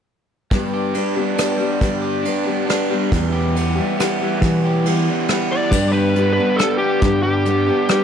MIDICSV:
0, 0, Header, 1, 6, 480
1, 0, Start_track
1, 0, Key_signature, 1, "major"
1, 0, Tempo, 433526
1, 575, Time_signature, 3, 2, 24, 8
1, 8900, End_track
2, 0, Start_track
2, 0, Title_t, "Lead electric guitar"
2, 0, Program_c, 0, 29
2, 6110, Note_on_c, 0, 74, 79
2, 6558, Note_off_c, 0, 74, 0
2, 6563, Note_on_c, 0, 71, 83
2, 6997, Note_off_c, 0, 71, 0
2, 7010, Note_on_c, 0, 71, 74
2, 7268, Note_on_c, 0, 69, 73
2, 7281, Note_off_c, 0, 71, 0
2, 7505, Note_off_c, 0, 69, 0
2, 7509, Note_on_c, 0, 67, 77
2, 7989, Note_off_c, 0, 67, 0
2, 8003, Note_on_c, 0, 67, 88
2, 8900, Note_off_c, 0, 67, 0
2, 8900, End_track
3, 0, Start_track
3, 0, Title_t, "Overdriven electric guitar"
3, 0, Program_c, 1, 29
3, 815, Note_on_c, 1, 67, 55
3, 1504, Note_on_c, 1, 62, 56
3, 1738, Note_on_c, 1, 55, 54
3, 2231, Note_off_c, 1, 67, 0
3, 2236, Note_on_c, 1, 67, 60
3, 2451, Note_off_c, 1, 62, 0
3, 2465, Note_on_c, 1, 62, 58
3, 2937, Note_off_c, 1, 62, 0
3, 3209, Note_off_c, 1, 55, 0
3, 3681, Note_off_c, 1, 67, 0
3, 3685, Note_on_c, 1, 67, 62
3, 3933, Note_on_c, 1, 59, 56
3, 4394, Note_off_c, 1, 59, 0
3, 4407, Note_on_c, 1, 59, 58
3, 5133, Note_off_c, 1, 67, 0
3, 5137, Note_on_c, 1, 67, 64
3, 5373, Note_off_c, 1, 59, 0
3, 5386, Note_on_c, 1, 59, 61
3, 5627, Note_on_c, 1, 55, 48
3, 5859, Note_off_c, 1, 59, 0
3, 5873, Note_on_c, 1, 59, 60
3, 6119, Note_on_c, 1, 52, 51
3, 6337, Note_off_c, 1, 67, 0
3, 6342, Note_off_c, 1, 55, 0
3, 6344, Note_off_c, 1, 59, 0
3, 6347, Note_off_c, 1, 52, 0
3, 6579, Note_on_c, 1, 55, 58
3, 7283, Note_off_c, 1, 55, 0
3, 7530, Note_on_c, 1, 59, 61
3, 8017, Note_on_c, 1, 55, 61
3, 8247, Note_off_c, 1, 59, 0
3, 8741, Note_off_c, 1, 55, 0
3, 8900, End_track
4, 0, Start_track
4, 0, Title_t, "Steel-string acoustic guitar"
4, 0, Program_c, 2, 25
4, 582, Note_on_c, 2, 43, 64
4, 587, Note_on_c, 2, 55, 66
4, 588, Note_on_c, 2, 50, 65
4, 591, Note_on_c, 2, 62, 74
4, 593, Note_on_c, 2, 59, 66
4, 605, Note_on_c, 2, 67, 69
4, 1045, Note_off_c, 2, 55, 0
4, 1049, Note_on_c, 2, 55, 50
4, 1058, Note_off_c, 2, 43, 0
4, 1059, Note_off_c, 2, 59, 0
4, 1061, Note_off_c, 2, 50, 0
4, 1063, Note_off_c, 2, 62, 0
4, 1063, Note_on_c, 2, 59, 52
4, 1077, Note_on_c, 2, 62, 55
4, 1082, Note_off_c, 2, 67, 0
4, 1086, Note_on_c, 2, 67, 57
4, 1273, Note_off_c, 2, 67, 0
4, 1281, Note_off_c, 2, 62, 0
4, 1286, Note_on_c, 2, 67, 44
4, 1292, Note_off_c, 2, 55, 0
4, 1294, Note_on_c, 2, 62, 39
4, 1296, Note_off_c, 2, 59, 0
4, 1309, Note_on_c, 2, 59, 38
4, 1312, Note_on_c, 2, 55, 37
4, 1517, Note_off_c, 2, 55, 0
4, 1530, Note_off_c, 2, 59, 0
4, 1530, Note_off_c, 2, 67, 0
4, 1530, Note_on_c, 2, 55, 51
4, 1534, Note_off_c, 2, 62, 0
4, 1543, Note_on_c, 2, 59, 51
4, 1559, Note_on_c, 2, 62, 55
4, 1563, Note_on_c, 2, 67, 54
4, 1750, Note_off_c, 2, 67, 0
4, 1763, Note_on_c, 2, 67, 39
4, 1765, Note_off_c, 2, 62, 0
4, 1773, Note_off_c, 2, 55, 0
4, 1774, Note_off_c, 2, 59, 0
4, 1778, Note_on_c, 2, 62, 44
4, 1787, Note_on_c, 2, 59, 34
4, 1798, Note_on_c, 2, 55, 30
4, 1992, Note_off_c, 2, 55, 0
4, 1996, Note_on_c, 2, 43, 67
4, 1997, Note_off_c, 2, 59, 0
4, 1997, Note_off_c, 2, 67, 0
4, 1998, Note_off_c, 2, 62, 0
4, 2001, Note_on_c, 2, 50, 66
4, 2005, Note_on_c, 2, 55, 72
4, 2010, Note_on_c, 2, 67, 71
4, 2011, Note_on_c, 2, 59, 66
4, 2012, Note_on_c, 2, 62, 68
4, 2485, Note_off_c, 2, 43, 0
4, 2486, Note_off_c, 2, 55, 0
4, 2488, Note_off_c, 2, 50, 0
4, 2490, Note_on_c, 2, 55, 55
4, 2493, Note_off_c, 2, 62, 0
4, 2503, Note_off_c, 2, 59, 0
4, 2507, Note_on_c, 2, 59, 47
4, 2514, Note_on_c, 2, 62, 54
4, 2526, Note_off_c, 2, 67, 0
4, 2531, Note_on_c, 2, 67, 54
4, 2717, Note_off_c, 2, 67, 0
4, 2723, Note_off_c, 2, 62, 0
4, 2730, Note_on_c, 2, 67, 42
4, 2733, Note_off_c, 2, 55, 0
4, 2734, Note_off_c, 2, 59, 0
4, 2736, Note_on_c, 2, 62, 39
4, 2747, Note_on_c, 2, 59, 44
4, 2765, Note_on_c, 2, 55, 36
4, 2951, Note_off_c, 2, 55, 0
4, 2963, Note_off_c, 2, 59, 0
4, 2965, Note_on_c, 2, 55, 52
4, 2972, Note_off_c, 2, 67, 0
4, 2976, Note_off_c, 2, 62, 0
4, 2976, Note_on_c, 2, 59, 50
4, 2990, Note_on_c, 2, 62, 55
4, 3002, Note_on_c, 2, 67, 55
4, 3203, Note_off_c, 2, 67, 0
4, 3210, Note_off_c, 2, 55, 0
4, 3216, Note_off_c, 2, 59, 0
4, 3217, Note_on_c, 2, 67, 44
4, 3218, Note_off_c, 2, 62, 0
4, 3231, Note_on_c, 2, 62, 43
4, 3240, Note_on_c, 2, 59, 34
4, 3246, Note_on_c, 2, 55, 34
4, 3454, Note_on_c, 2, 40, 59
4, 3456, Note_off_c, 2, 67, 0
4, 3462, Note_on_c, 2, 47, 69
4, 3463, Note_off_c, 2, 55, 0
4, 3463, Note_off_c, 2, 62, 0
4, 3468, Note_off_c, 2, 59, 0
4, 3470, Note_on_c, 2, 52, 68
4, 3476, Note_on_c, 2, 55, 70
4, 3477, Note_on_c, 2, 67, 73
4, 3482, Note_on_c, 2, 64, 67
4, 3922, Note_off_c, 2, 52, 0
4, 3935, Note_off_c, 2, 40, 0
4, 3935, Note_on_c, 2, 52, 53
4, 3939, Note_off_c, 2, 47, 0
4, 3943, Note_off_c, 2, 64, 0
4, 3946, Note_off_c, 2, 55, 0
4, 3950, Note_on_c, 2, 55, 50
4, 3956, Note_on_c, 2, 64, 53
4, 3961, Note_off_c, 2, 67, 0
4, 3966, Note_on_c, 2, 67, 59
4, 4144, Note_off_c, 2, 67, 0
4, 4157, Note_on_c, 2, 67, 47
4, 4166, Note_off_c, 2, 64, 0
4, 4175, Note_off_c, 2, 52, 0
4, 4176, Note_off_c, 2, 55, 0
4, 4179, Note_on_c, 2, 64, 41
4, 4190, Note_on_c, 2, 55, 38
4, 4192, Note_on_c, 2, 52, 37
4, 4390, Note_off_c, 2, 52, 0
4, 4403, Note_on_c, 2, 52, 50
4, 4405, Note_off_c, 2, 55, 0
4, 4406, Note_off_c, 2, 67, 0
4, 4417, Note_off_c, 2, 64, 0
4, 4418, Note_on_c, 2, 55, 50
4, 4429, Note_on_c, 2, 64, 53
4, 4435, Note_on_c, 2, 67, 58
4, 4634, Note_off_c, 2, 67, 0
4, 4647, Note_on_c, 2, 67, 47
4, 4650, Note_off_c, 2, 52, 0
4, 4653, Note_off_c, 2, 64, 0
4, 4657, Note_off_c, 2, 55, 0
4, 4666, Note_on_c, 2, 64, 40
4, 4672, Note_on_c, 2, 55, 38
4, 4691, Note_on_c, 2, 52, 35
4, 4887, Note_off_c, 2, 52, 0
4, 4891, Note_off_c, 2, 67, 0
4, 4894, Note_on_c, 2, 40, 64
4, 4895, Note_off_c, 2, 64, 0
4, 4898, Note_off_c, 2, 55, 0
4, 4901, Note_on_c, 2, 52, 74
4, 4902, Note_on_c, 2, 47, 67
4, 4908, Note_on_c, 2, 64, 70
4, 4911, Note_on_c, 2, 55, 76
4, 4915, Note_on_c, 2, 67, 78
4, 5342, Note_off_c, 2, 52, 0
4, 5356, Note_on_c, 2, 52, 55
4, 5365, Note_off_c, 2, 55, 0
4, 5372, Note_off_c, 2, 64, 0
4, 5375, Note_off_c, 2, 40, 0
4, 5378, Note_on_c, 2, 55, 51
4, 5379, Note_off_c, 2, 47, 0
4, 5385, Note_off_c, 2, 67, 0
4, 5386, Note_on_c, 2, 64, 54
4, 5397, Note_on_c, 2, 67, 58
4, 5842, Note_off_c, 2, 52, 0
4, 5856, Note_on_c, 2, 52, 45
4, 5857, Note_off_c, 2, 55, 0
4, 5861, Note_off_c, 2, 64, 0
4, 5866, Note_off_c, 2, 67, 0
4, 5868, Note_on_c, 2, 55, 51
4, 5875, Note_on_c, 2, 64, 52
4, 5882, Note_on_c, 2, 67, 56
4, 6323, Note_off_c, 2, 55, 0
4, 6332, Note_off_c, 2, 52, 0
4, 6332, Note_on_c, 2, 43, 65
4, 6335, Note_on_c, 2, 50, 66
4, 6336, Note_on_c, 2, 55, 65
4, 6341, Note_off_c, 2, 67, 0
4, 6346, Note_off_c, 2, 64, 0
4, 6347, Note_on_c, 2, 59, 69
4, 6352, Note_on_c, 2, 62, 74
4, 6354, Note_on_c, 2, 67, 72
4, 6814, Note_off_c, 2, 43, 0
4, 6814, Note_off_c, 2, 55, 0
4, 6816, Note_off_c, 2, 50, 0
4, 6819, Note_on_c, 2, 55, 46
4, 6823, Note_off_c, 2, 59, 0
4, 6824, Note_off_c, 2, 62, 0
4, 6827, Note_on_c, 2, 59, 48
4, 6843, Note_off_c, 2, 67, 0
4, 6843, Note_on_c, 2, 62, 50
4, 6847, Note_on_c, 2, 67, 57
4, 7052, Note_off_c, 2, 67, 0
4, 7058, Note_off_c, 2, 55, 0
4, 7062, Note_off_c, 2, 59, 0
4, 7065, Note_on_c, 2, 67, 42
4, 7069, Note_off_c, 2, 62, 0
4, 7083, Note_on_c, 2, 62, 41
4, 7087, Note_on_c, 2, 59, 44
4, 7095, Note_on_c, 2, 55, 37
4, 7289, Note_off_c, 2, 55, 0
4, 7299, Note_off_c, 2, 59, 0
4, 7301, Note_off_c, 2, 67, 0
4, 7302, Note_on_c, 2, 55, 50
4, 7309, Note_off_c, 2, 62, 0
4, 7312, Note_on_c, 2, 59, 50
4, 7329, Note_on_c, 2, 62, 56
4, 7333, Note_on_c, 2, 67, 52
4, 7781, Note_on_c, 2, 43, 60
4, 7791, Note_off_c, 2, 55, 0
4, 7792, Note_on_c, 2, 50, 70
4, 7793, Note_off_c, 2, 62, 0
4, 7795, Note_on_c, 2, 55, 64
4, 7796, Note_off_c, 2, 59, 0
4, 7800, Note_off_c, 2, 67, 0
4, 7801, Note_on_c, 2, 59, 74
4, 7804, Note_on_c, 2, 67, 71
4, 7806, Note_on_c, 2, 62, 64
4, 8251, Note_off_c, 2, 55, 0
4, 8255, Note_on_c, 2, 55, 54
4, 8259, Note_off_c, 2, 43, 0
4, 8264, Note_off_c, 2, 50, 0
4, 8264, Note_off_c, 2, 59, 0
4, 8268, Note_off_c, 2, 62, 0
4, 8268, Note_on_c, 2, 59, 47
4, 8281, Note_on_c, 2, 62, 50
4, 8286, Note_off_c, 2, 67, 0
4, 8290, Note_on_c, 2, 67, 56
4, 8475, Note_off_c, 2, 67, 0
4, 8487, Note_off_c, 2, 62, 0
4, 8488, Note_on_c, 2, 67, 50
4, 8496, Note_off_c, 2, 55, 0
4, 8499, Note_off_c, 2, 59, 0
4, 8500, Note_on_c, 2, 62, 40
4, 8513, Note_on_c, 2, 59, 38
4, 8529, Note_on_c, 2, 55, 41
4, 8722, Note_off_c, 2, 55, 0
4, 8731, Note_off_c, 2, 59, 0
4, 8733, Note_off_c, 2, 67, 0
4, 8735, Note_on_c, 2, 55, 58
4, 8738, Note_off_c, 2, 62, 0
4, 8744, Note_on_c, 2, 59, 60
4, 8760, Note_on_c, 2, 62, 58
4, 8767, Note_on_c, 2, 67, 58
4, 8900, Note_off_c, 2, 55, 0
4, 8900, Note_off_c, 2, 59, 0
4, 8900, Note_off_c, 2, 62, 0
4, 8900, Note_off_c, 2, 67, 0
4, 8900, End_track
5, 0, Start_track
5, 0, Title_t, "Picked electric bass"
5, 0, Program_c, 3, 34
5, 3455, Note_on_c, 3, 40, 78
5, 4193, Note_off_c, 3, 40, 0
5, 4887, Note_on_c, 3, 52, 78
5, 5629, Note_off_c, 3, 52, 0
5, 6323, Note_on_c, 3, 43, 74
5, 7066, Note_off_c, 3, 43, 0
5, 7778, Note_on_c, 3, 43, 89
5, 8516, Note_off_c, 3, 43, 0
5, 8900, End_track
6, 0, Start_track
6, 0, Title_t, "Drums"
6, 568, Note_on_c, 9, 36, 88
6, 569, Note_on_c, 9, 51, 45
6, 679, Note_off_c, 9, 36, 0
6, 680, Note_off_c, 9, 51, 0
6, 1046, Note_on_c, 9, 51, 47
6, 1157, Note_off_c, 9, 51, 0
6, 1530, Note_on_c, 9, 51, 55
6, 1540, Note_on_c, 9, 37, 71
6, 1641, Note_off_c, 9, 51, 0
6, 1651, Note_off_c, 9, 37, 0
6, 2007, Note_on_c, 9, 51, 53
6, 2008, Note_on_c, 9, 36, 89
6, 2118, Note_off_c, 9, 51, 0
6, 2119, Note_off_c, 9, 36, 0
6, 2493, Note_on_c, 9, 51, 48
6, 2604, Note_off_c, 9, 51, 0
6, 2982, Note_on_c, 9, 51, 51
6, 2992, Note_on_c, 9, 37, 69
6, 3093, Note_off_c, 9, 51, 0
6, 3102, Note_off_c, 9, 37, 0
6, 3455, Note_on_c, 9, 36, 83
6, 3460, Note_on_c, 9, 51, 48
6, 3566, Note_off_c, 9, 36, 0
6, 3571, Note_off_c, 9, 51, 0
6, 3945, Note_on_c, 9, 51, 50
6, 4056, Note_off_c, 9, 51, 0
6, 4424, Note_on_c, 9, 51, 51
6, 4434, Note_on_c, 9, 37, 69
6, 4535, Note_off_c, 9, 51, 0
6, 4545, Note_off_c, 9, 37, 0
6, 4894, Note_on_c, 9, 51, 50
6, 4895, Note_on_c, 9, 36, 89
6, 5005, Note_off_c, 9, 51, 0
6, 5006, Note_off_c, 9, 36, 0
6, 5377, Note_on_c, 9, 51, 50
6, 5488, Note_off_c, 9, 51, 0
6, 5850, Note_on_c, 9, 51, 51
6, 5860, Note_on_c, 9, 37, 70
6, 5960, Note_off_c, 9, 51, 0
6, 5970, Note_off_c, 9, 37, 0
6, 6331, Note_on_c, 9, 36, 94
6, 6334, Note_on_c, 9, 49, 82
6, 6442, Note_off_c, 9, 36, 0
6, 6444, Note_off_c, 9, 49, 0
6, 6819, Note_on_c, 9, 42, 49
6, 6930, Note_off_c, 9, 42, 0
6, 7297, Note_on_c, 9, 42, 54
6, 7307, Note_on_c, 9, 37, 75
6, 7407, Note_off_c, 9, 42, 0
6, 7417, Note_off_c, 9, 37, 0
6, 7769, Note_on_c, 9, 42, 51
6, 7774, Note_on_c, 9, 36, 99
6, 7880, Note_off_c, 9, 42, 0
6, 7885, Note_off_c, 9, 36, 0
6, 8256, Note_on_c, 9, 42, 51
6, 8366, Note_off_c, 9, 42, 0
6, 8732, Note_on_c, 9, 42, 58
6, 8742, Note_on_c, 9, 37, 75
6, 8843, Note_off_c, 9, 42, 0
6, 8853, Note_off_c, 9, 37, 0
6, 8900, End_track
0, 0, End_of_file